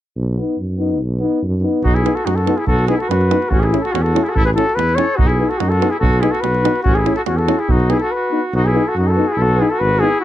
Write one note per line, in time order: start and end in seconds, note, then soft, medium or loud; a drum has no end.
0.16 0.39 B1 medium
0.36 0.57 B3 soft
0.36 0.57 D#4 soft
0.58 1.02 F#2 medium
0.77 0.99 B3 soft
0.77 1.00 D#4 soft
1.00 1.23 B1 medium
1.19 1.41 B3 medium
1.19 1.42 D#4 medium
1.42 1.65 F#2 medium
1.62 1.83 B3 medium
1.62 1.83 D#4 medium
1.84 2.07 B1 medium
1.84 1.96 D#4 medium
1.84 1.96 F#4 medium
1.84 davul low medium
1.95 2.16 E4 medium
1.95 2.17 G#4 medium
1.95 davul high soft
2.04 2.13 B3 medium
2.04 2.13 D#4 soft
2.04 davul high medium
2.15 2.27 F#4 medium
2.15 2.27 A4 medium
2.15 davul high soft
2.25 2.49 F#2 medium
2.25 2.38 D#4 soft
2.25 2.37 F#4 medium
2.25 davul high medium
2.35 2.59 F#4 medium
2.35 2.58 A4 medium
2.35 davul high soft
2.46 2.56 B3 medium
2.46 2.55 D#4 medium
2.46 davul high medium
2.57 2.66 E4 medium
2.57 2.66 G#4 medium
2.57 davul high soft
2.67 2.90 B1 medium
2.67 2.87 F#4 medium
2.67 2.87 A4 medium
2.67 davul low medium
2.79 davul high soft
2.88 2.97 B3 medium
2.88 2.97 D#4 medium
2.88 2.99 E4 medium
2.88 2.97 G#4 medium
2.88 davul high medium
2.98 3.10 F#4 medium
2.98 3.10 A4 medium
2.98 davul high soft
3.09 3.33 F#2 medium
3.09 3.53 F#4 medium
3.09 3.51 B4 medium
3.09 davul high medium
3.21 davul high soft
3.30 3.39 B3 medium
3.30 3.39 D#4 medium
3.30 davul high medium
3.42 davul high soft
3.50 3.74 A1 loud
3.50 3.65 C#4 medium
3.50 3.62 F#4 medium
3.50 davul low medium
3.60 3.84 E4 medium
3.60 3.80 G#4 medium
3.60 davul high soft
3.70 3.81 C#4 medium
3.70 3.79 E4 medium
3.70 davul high medium
3.81 3.95 F#4 medium
3.81 3.93 A4 medium
3.85 davul high soft
3.92 4.17 E2 medium
3.92 4.05 C#4 medium
3.92 4.04 F#4 medium
3.92 davul high medium
4.02 4.25 F#4 medium
4.02 4.25 A4 medium
4.02 davul high soft
4.14 4.22 C#4 medium
4.14 4.23 E4 soft
4.14 davul high medium
4.23 4.30 E4 medium
4.23 4.29 G#4 medium
4.23 davul high soft
4.28 4.31 F#4 medium
4.28 4.33 G#4 medium
4.28 4.31 A4 medium
4.34 4.58 A1 medium
4.34 4.45 E4 loud
4.34 4.44 A4 medium
4.34 davul low medium
4.45 4.51 G#4 medium
4.45 4.50 B4 medium
4.45 davul high soft
4.55 4.65 C#4 medium
4.55 4.64 E4 medium
4.55 4.80 F#4 medium
4.55 4.77 A4 medium
4.55 davul high medium
4.69 davul high soft
4.75 4.99 E2 medium
4.75 4.98 E4 medium
4.75 4.97 B4 medium
4.75 davul high medium
4.89 davul high soft
4.95 5.06 C#4 medium
4.95 5.06 E4 soft
4.95 5.19 A4 medium
4.95 5.17 C#5 medium
4.95 davul high medium
5.16 5.41 B1 medium
5.16 5.29 D#4 medium
5.16 5.28 F#4 medium
5.16 davul low medium
5.26 5.51 E4 medium
5.26 5.50 G#4 medium
5.26 davul high soft
5.39 5.47 B3 soft
5.39 5.48 D#4 soft
5.48 5.62 F#4 medium
5.48 5.61 A4 medium
5.48 davul high soft
5.59 5.83 F#2 medium
5.59 5.73 D#4 medium
5.59 5.70 F#4 medium
5.59 davul high medium
5.69 5.92 F#4 medium
5.69 5.91 A4 medium
5.69 davul high soft
5.80 5.89 B3 medium
5.80 5.90 D#4 soft
5.80 davul high medium
5.89 5.99 E4 medium
5.89 5.99 G#4 medium
5.89 davul high soft
5.99 6.24 B1 loud
5.99 6.22 F#4 medium
5.99 6.21 A4 medium
5.99 davul low medium
6.13 davul high soft
6.20 6.31 B3 medium
6.20 6.31 D#4 medium
6.20 6.33 E4 medium
6.20 6.32 G#4 medium
6.20 davul high medium
6.31 6.42 F#4 medium
6.31 6.42 A4 medium
6.31 davul high soft
6.40 6.67 B1 medium
6.40 6.84 F#4 medium
6.40 6.82 B4 medium
6.40 davul high medium
6.54 davul high soft
6.64 6.73 B3 medium
6.64 6.72 D#4 medium
6.64 davul high medium
6.76 davul high soft
6.83 7.09 A1 medium
6.83 7.00 C#4 medium
6.83 6.96 F#4 medium
6.83 davul low medium
6.95 7.17 E4 medium
6.95 7.15 G#4 medium
6.95 davul high soft
7.05 7.15 C#4 medium
7.05 7.14 E4 medium
7.05 davul high medium
7.16 7.22 F#4 medium
7.16 7.21 A4 medium
7.16 davul high soft
7.26 7.50 E2 medium
7.26 7.41 C#4 medium
7.26 7.39 F#4 medium
7.26 davul high medium
7.37 7.60 F#4 medium
7.37 7.60 A4 medium
7.37 davul high soft
7.47 7.56 C#4 medium
7.47 7.56 E4 soft
7.47 davul high medium
7.59 7.73 E4 medium
7.59 7.71 G#4 medium
7.59 davul high soft
7.69 7.92 B1 loud
7.69 7.95 D#4 medium
7.69 7.91 F#4 medium
7.69 davul low medium
7.80 davul high soft
7.90 7.98 B3 soft
7.90 7.99 D#4 soft
7.90 8.02 E4 medium
7.90 7.99 G#4 medium
7.90 davul high medium
8.00 8.14 F#4 medium
8.00 8.13 A4 medium
8.00 davul high soft
8.11 8.55 F#4 medium
8.11 8.43 B4 medium
8.31 8.40 B3 soft
8.31 8.40 D#4 soft
8.53 8.76 B1 loud
8.53 8.69 D#4 medium
8.53 8.66 F#4 medium
8.65 8.90 E4 medium
8.65 8.88 G#4 medium
8.73 8.82 B3 medium
8.73 8.83 D#4 medium
8.87 8.97 F#4 medium
8.87 8.96 A4 medium
8.95 9.18 F#2 medium
8.95 9.09 F#4 medium
9.00 9.13 D#4 soft
9.07 9.29 A4 medium
9.12 9.34 F#4 medium
9.16 9.24 B3 medium
9.16 9.26 D#4 medium
9.28 9.39 G#4 medium
9.32 9.43 E4 medium
9.37 9.60 B1 loud
9.37 9.61 A4 medium
9.42 9.64 F#4 medium
9.57 9.66 B3 medium
9.57 9.69 D#4 medium
9.57 9.71 G#4 medium
9.62 9.74 E4 soft
9.70 9.83 F#4 medium
9.70 9.81 A4 medium
9.79 10.03 G#1 medium
9.79 10.01 B4 loud
9.83 10.05 F#4 medium
10.00 10.10 B3 medium
10.00 10.09 D#4 medium
10.00 10.20 G#4 medium
10.04 10.23 E4 medium
10.21 10.24 F#4 medium